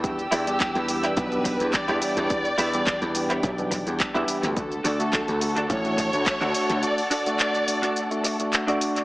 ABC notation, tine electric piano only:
X:1
M:4/4
L:1/16
Q:"Swing 16ths" 1/4=106
K:Edor
V:1 name="Tine electric piano"
[E,G,B,DG] z2 [E,G,B,DG]3 [E,G,B,DG]3 [E,G,B,DG]2 [E,G,B,DG]2 [E,G,B,DG]3 | [E,G,B,DG] z2 [E,G,B,DG]3 [E,G,B,DG]3 [E,G,B,DG]2 [E,G,B,DG]2 [E,G,B,DG]3 | [A,DF] z2 [A,DF]3 [A,DF]3 [A,DF]2 [A,DF]2 [A,DF]3 | [A,DF] z2 [A,DF]3 [A,DF]3 [A,DF]2 [A,DF]2 [A,DF]3 |]